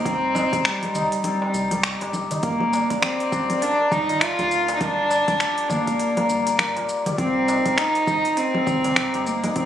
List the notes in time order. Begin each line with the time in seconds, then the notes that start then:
Already playing: A#3 D#4 F4 G4 C5
0.05 C2 C4, kick, open hi-hat, shaker
0.35 D#4, darbuka tek, low conga, shaker
0.53 C2, kick, open hi-hat, darbuka ka, shaker
0.65 G3, finger snap, open hi-hat, shaker
0.83 open hi-hat, low conga
0.95 C2 D#4, darbuka dum, shaker
1.12 open hi-hat, shaker
1.24 G3 C4, open hi-hat, low conga, shaker
1.42 C4, darbuka tek
1.54 C2, shaker
1.71 G4, open hi-hat, darbuka ka, low conga, shaker
1.83 finger snap, open hi-hat, shaker
2.01 G1 G4, open hi-hat, darbuka tek
2.13 low conga, shaker
2.31 D#4, open hi-hat, darbuka dum, shaker
2.43 G1 A#3, kick, open hi-hat, shaker
2.60 low conga
2.73 D4, darbuka ka, darbuka tek, shaker
2.90 G1, kick, open hi-hat, darbuka ka, shaker
3.02 C4 G4, finger snap, open hi-hat, low conga, shaker
3.20 open hi-hat
3.32 G1 D4, kick, shaker
3.50 open hi-hat, low conga, shaker
3.62 A#3 D4, open hi-hat, darbuka tek, shaker
3.79 A#3
3.92 G1 D#4, kick, darbuka dum, low conga, shaker
4.09 F4, open hi-hat, darbuka ka, darbuka tek, darbuka dum, shaker
4.21 F4, finger snap, open hi-hat, shaker
4.39 D2 F4, open hi-hat, darbuka ka, low conga
4.51 shaker
4.68 D4, open hi-hat, darbuka tek, shaker
4.75 D#4
4.81 G1 A#3 D4, kick, open hi-hat, low conga, shaker
5.10 D4, darbuka tek, shaker
5.27 G1, kick, open hi-hat, darbuka ka, low conga, shaker
5.40 G4, finger snap, open hi-hat, shaker
5.58 open hi-hat
5.69 G1 A#3 D4, darbuka tek, low conga, darbuka dum, shaker
5.87 kick, open hi-hat, shaker
5.99 A#3, open hi-hat, shaker
6.17 A#3, open hi-hat, darbuka tek, low conga
6.29 G1, shaker
6.46 D5, open hi-hat, darbuka ka, shaker
6.59 A#3, finger snap, open hi-hat, low conga, shaker
6.76 D1 F4, open hi-hat, darbuka tek
6.89 shaker
7.06 G4, open hi-hat, darbuka dum, low conga, shaker
7.18 C2 C4, kick, open hi-hat, low conga, shaker
7.48 D#4, darbuka ka, darbuka tek, shaker
7.66 C2, kick, open hi-hat, darbuka ka, low conga, shaker
7.78 D#4, finger snap, open hi-hat, shaker
7.95 open hi-hat
8.07 C2 D#4, kick, low conga, shaker
8.25 open hi-hat, shaker
8.37 C4, open hi-hat, darbuka tek, shaker
8.55 C4, low conga
8.66 C2, kick, darbuka dum, shaker
8.84 G4, open hi-hat, darbuka ka, darbuka tek, darbuka dum, shaker
8.96 finger snap, open hi-hat, low conga, shaker
9.14 G1 G4, open hi-hat, darbuka ka
9.26 A#3, shaker
9.44 D#4, open hi-hat, darbuka tek, low conga, shaker
9.56 C2 C4, kick, open hi-hat, shaker